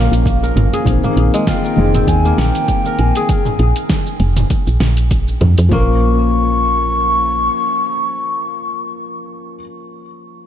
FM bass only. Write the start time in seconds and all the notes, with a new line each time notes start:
0.12 A#1
0.56 G#1
0.86 A#1
1.17 A#1
1.78 F1
2.07 D#2
2.38 A#1
2.99 A#1
3.59 A#1
4.20 F1
4.67 A#1
4.81 A#1
5.41 F2
5.58 F2
5.71 A#1